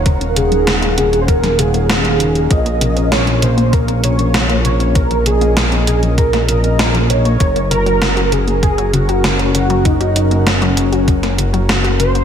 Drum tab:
HH |xxxxxxxxxxxxxxxx|xxxxxxxxxxxxxxxx|xxxxxxxxxxxxxxxx|xxxxxxxxxxxxxxxx|
SD |----o----o--o---|----o-------o---|----o----o--o---|----o-------o---|
BD |o-------o-------|o-------o-------|o-------o-------|o-------o-------|

HH |xxxxxxxxxxxxxxxx|
SD |----o----o--o---|
BD |o-------o-------|